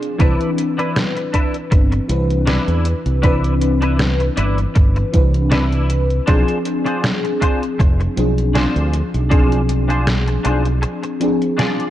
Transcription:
Already playing: F3 C4 D4 G#4
0.03 closed hi-hat
0.18 C2 E3 C4 D4 E4 B4, kick, closed hi-hat
0.41 closed hi-hat
0.58 closed hi-hat
0.78 D4 E4 B4, closed hi-hat
0.96 snare, closed hi-hat
1.16 muted clean electric guitar stroke, closed hi-hat
1.34 D4 E4 B4, kick, closed hi-hat
1.54 closed hi-hat
1.71 G1, muted clean electric guitar stroke, kick, closed hi-hat
1.92 muted clean electric guitar stroke, closed hi-hat
2.08 C2 E3 C4 D4 B4, closed hi-hat
2.31 closed hi-hat
2.47 D4 E4 B4, snare, closed hi-hat
2.68 E2, closed hi-hat
2.85 closed hi-hat
3.06 C2, closed hi-hat
3.23 E3 C4 D4 E4 B4, kick, closed hi-hat
3.44 closed hi-hat
3.61 closed hi-hat
3.82 D4 E4 B4, closed hi-hat
3.99 snare, closed hi-hat
4.20 muted clean electric guitar stroke, closed hi-hat
4.37 G1 D4 E4 B4, closed hi-hat
4.58 closed hi-hat
4.75 G1, muted clean electric guitar stroke, kick, closed hi-hat
4.96 muted clean electric guitar stroke, closed hi-hat
5.12 C2 E3 C4 D4 B4, kick, closed hi-hat
5.34 closed hi-hat
5.51 D4 E4 B4, snare, closed hi-hat
5.72 closed hi-hat
5.90 closed hi-hat
6.10 closed hi-hat
6.27 B1 F3 C4 D4 F4 G#4 C5, kick, closed hi-hat
6.48 closed hi-hat
6.65 closed hi-hat
6.85 D4 F4 G#4 C5, closed hi-hat
7.04 snare, closed hi-hat
7.24 muted clean electric guitar stroke, closed hi-hat
7.41 D4 F4 G#4 C5, kick, closed hi-hat
7.63 closed hi-hat
7.79 F1, muted clean electric guitar stroke, kick, closed hi-hat
8.00 muted clean electric guitar stroke, closed hi-hat
8.16 B1 F3 C4 D4 G#4, closed hi-hat
8.38 closed hi-hat
8.55 D4 F4 G#4 C5, snare, closed hi-hat
8.76 D2, closed hi-hat
8.93 closed hi-hat
9.14 B1, closed hi-hat
9.30 F3 C4 D4 F4 G#4 C5, kick, closed hi-hat
9.52 closed hi-hat
9.69 closed hi-hat
9.89 D4 F4 G#4 C5, closed hi-hat
10.07 snare, closed hi-hat
10.27 muted clean electric guitar stroke, closed hi-hat
10.45 B1 D4 F4 G#4 C5, closed hi-hat
10.65 closed hi-hat
10.82 muted clean electric guitar stroke, closed hi-hat
11.03 muted clean electric guitar stroke, closed hi-hat
11.20 F3 C4 D4 G#4, closed hi-hat
11.42 closed hi-hat
11.58 D4 F4 G#4 D5, snare, closed hi-hat
11.80 closed hi-hat

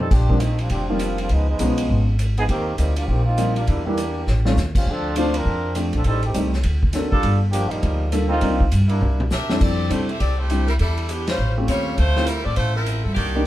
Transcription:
0.11 A#1 F3 C4 D4 G4, kick, snare, crash
0.29 F3 G3 A#3 C4 D4, kick
0.40 F3 A3 C4 D#4, hi-hat pedal, ride
0.59 G3 C4 D4 F4, ride
0.70 F1 F3 C4 D4 G4, kick, ride
0.89 F3 G3 A#3 C4 D4 F4
0.99 hi-hat pedal, ride
1.18 G3 C4 D4 F4, ride
1.29 C#2 F3 G#3 B3 D#4, kick, ride
1.50 F3 G#3 B3 D#4
1.59 B1 F3 G#3 B3 C#4 D#4, hi-hat pedal, ride
1.78 ride
1.89 G#1, kick
2.19 hi-hat pedal, ride
2.37 F3 B3 D#4 G#4, ride
2.49 D#2 D#3 A#3 C4 G4, kick, ride
2.78 D2 G3 A#3 C4 D#4, hi-hat pedal, ride
2.96 G3 A#3 D4 F4, ride
3.06 A#1 D#3 A#3 C4 F4 G4, kick
3.25 A#3 C4 D#4 F4
3.38 F3 G3 A#3 C4 D#4, hi-hat pedal, ride
3.56 G3 A#3 D4 F4, ride
3.67 E2 G3 A#3 D4 E4, kick, ride
3.85 E3 G3 A#3 D4 E4 G4
3.97 hi-hat pedal, ride
4.27 A1, snare
4.45 G3 A3 C4 C#4 F4, snare
4.56 D#2, snare, hi-hat pedal
4.75 G3 C4 C#4 F4, kick, crash
4.86 D2 F3 C4 D4 A4, kick
5.16 F3 A3 C4 D4 F4 C5, hi-hat pedal, ride
5.34 F3 C4 D4 A#4, ride
5.46 F2, kick
5.75 F3 A3 C4 D4 G4, hi-hat pedal, ride
5.93 A#1 F3 C4 D4 A4, ride
6.04 A1 G3 C4 D#4 A4, kick, ride
6.23 D#3 A3 C4 G4, ride
6.34 C2 G3 A3 C4 D#4 G4, hi-hat pedal, ride
6.53 snare
6.63 D2, kick, ride
6.83 kick
6.93 F#3 A#3 C4 D4 A4, snare, hi-hat pedal, ride
7.12 G3 D4 F4 A4, kick
7.23 G1, kick, ride
7.51 F3 A#3 D4 G4, hi-hat pedal, ride
7.69 F3 G3 A#3 D#4, muted upright bass stroke, ride
7.83 D2, kick, ride
8.12 G3 A#3 D4 F4 A4, hi-hat pedal, ride
8.28 A#3 C4 D#4 F4
8.41 C2 G3 C4 D4 D#4 A#4, kick, ride
8.60 kick
8.72 G2, hi-hat pedal, ride
8.88 G3 A#3 D4 E4, ride
9.01 C2, mid tom
9.20 mid tom
9.30 C3 D4 G4 A#4 E5, snare, hi-hat pedal
9.50 F2 G3 C4 D4 E4 A4, snare
9.61 F2 C4 G4 A4 D5, kick, crash
9.90 C3 G3 A3 C4 D4 E4 G4 A4 C5, hi-hat pedal, ride
10.09 C4 G4 A4 E5, ride
10.20 C2 C4 G4 A4 D5, kick, ride
10.39 A3 E4 G4 C5
10.50 G3 C4 D4 E4 G4, hi-hat pedal, ride
10.67 G3 C4 E4 A#4, ride
10.79 E2 G3 D4 E4 A4, kick, ride
10.97 ride
11.09 E3 B3 D4 G4, hi-hat pedal, ride
11.27 G3 C#4 F4 C5, snare, ride
11.38 A1
11.57 A3 C4 C#4 F4 G4
11.68 D#2 G3 C4 F4 C#5, hi-hat pedal, ride
11.97 D2 A3 E4 F4 C5, kick, ride
12.16 A3 C4 E4 F4 G4, snare
12.26 G3 C4 E4 A#4, hi-hat pedal, ride
12.44 A2 C4 F4 A4 D5
12.56 A1 A3 E4 F4 C5, kick, ride
12.74 F3 C4 E4 A#4
12.86 hi-hat pedal, ride
13.04 G2 F3 C4 E4 A4
13.14 C2 D#3 A#3 D4 G4, kick, ride
13.35 A#3 C4 D4 D#4 G4

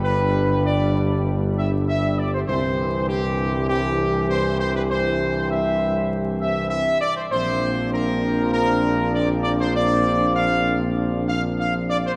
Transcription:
Already playing: G1 G2 G3 D4 G4
0.03 B4
0.65 D5
1.57 E5
1.88 E5
2.18 D5
2.33 C5
2.46 C2 G2 E3 C4 G4 C5
3.07 G4
3.68 G4
4.30 C5
4.59 C5
4.75 B4
4.90 C5
5.50 E5
6.40 E5
6.70 E5
7.00 D5
7.17 C5
7.31 A#1 A#2 F3 C4 D4 C5
7.92 A#4
8.52 A#4
9.13 D5
9.43 D5
9.60 C5
9.75 D5
10.36 F5
11.29 F5
11.59 F5
11.90 D5
12.06 C5

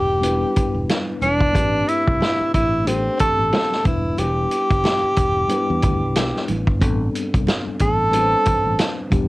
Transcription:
Already playing: E1 G3 B3 D4 E4 G4 B4
0.20 G3 B3 D4 E4 B4, closed hi-hat, muted conga
0.56 kick, closed hi-hat
0.75 E1
0.89 snare, closed hi-hat, high conga
1.21 E1 D4, closed hi-hat, high conga
1.41 kick
1.52 A1 A3 B3 D4 G4 B4, kick, closed hi-hat, muted conga
1.60 C4
1.88 E4, closed hi-hat
2.08 C2, kick
2.21 snare, closed hi-hat, high conga
2.41 muted fingered electric bass stroke
2.54 A1 E4, kick, closed hi-hat
2.85 A3 B3 C4 D4 G4 A4, closed hi-hat, muted conga
2.92 C4
3.19 A4, muted fingered electric bass stroke, kick, closed hi-hat, low conga
3.39 A1
3.53 snare, closed hi-hat, high conga
3.72 snare
3.84 E1 G3 B3 D4 E4 B4, kick, closed hi-hat, high conga
4.18 E1 G4, closed hi-hat, muted conga
4.51 closed hi-hat
4.71 G1, kick, closed hi-hat
4.84 snare, closed hi-hat, high conga
5.04 muted fingered electric bass stroke
5.16 E1, kick, closed hi-hat
5.48 G3 B3 D4 E4 B4, closed hi-hat, muted conga
5.70 E2
5.82 D2, kick, closed hi-hat, muted conga, low conga
6.03 C2
6.15 B1, snare, closed hi-hat, high conga
6.36 snare
6.48 A1, closed hi-hat, high conga
6.67 G1, kick
6.79 A1 G3 B3 C4 D4 A4, kick, closed hi-hat, muted conga
7.15 closed hi-hat
7.34 C2, kick, closed hi-hat
7.47 snare, closed hi-hat, high conga
7.67 muted fingered electric bass stroke
7.79 A1 A4, kick, closed hi-hat
8.10 G3 C4 D4 B4, closed hi-hat, muted conga
8.20 C5
8.45 muted fingered electric bass stroke, kick, closed hi-hat, low conga
8.65 A1
8.79 snare, closed hi-hat, high conga
9.10 E1 E3 G3 B3 D4 G4, kick, closed hi-hat, high conga

